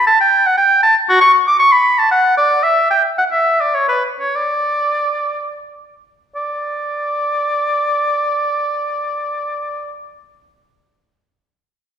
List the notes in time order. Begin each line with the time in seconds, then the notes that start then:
0.07 A5
0.21 G5
0.46 F#5
0.57 G5
0.83 A5
1.09 F#4
1.21 C#6
1.47 D6
1.59 C#6
1.72 B5
1.99 A5
2.11 F#5
2.37 D5
2.63 E5
2.90 G5
3.18 F#5
3.32 E5
3.60 D5
3.74 C#5
3.89 B4
4.19 C#5
4.35 D5
6.36 D5